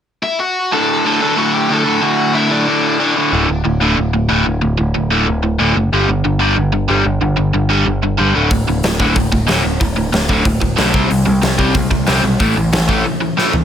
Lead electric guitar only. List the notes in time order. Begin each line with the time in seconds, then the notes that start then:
0.23 E4 E5
0.40 F#4 F#5
0.72 A4 A5
1.06 A4 A5
1.38 F#4 F#5
1.54 G4 G5
1.72 A4 A5
2.03 F#4 F#5
2.34 E4 E5
2.50 D4 D5